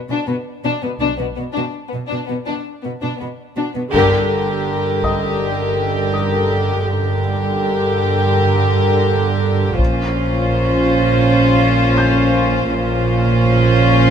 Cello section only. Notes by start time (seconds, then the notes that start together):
0.09 B2
0.28 B2
0.64 B2
0.83 B2
1.01 B2
1.20 B2
1.38 B2
1.57 B2
1.93 B2
2.12 B2
2.30 B2
2.48 B2
2.85 B2
3.02 B2
3.21 B2
3.57 B2
3.76 B2
3.94 G2
6.86 G2
9.79 A#2
12.72 A#2